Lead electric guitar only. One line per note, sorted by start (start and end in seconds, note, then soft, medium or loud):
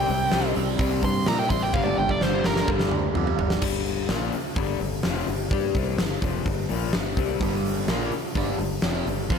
0.00 0.52 G5 loud
1.05 1.27 C6 loud
1.28 1.39 A#5 loud
1.39 1.49 G5 medium
1.50 1.61 C6 loud
1.63 1.73 G5 loud
1.73 1.84 F5 medium
1.84 1.96 D5 loud
1.98 2.09 G5 medium
2.11 2.21 D5 medium
2.22 2.44 C5 medium
2.46 2.68 A#4 loud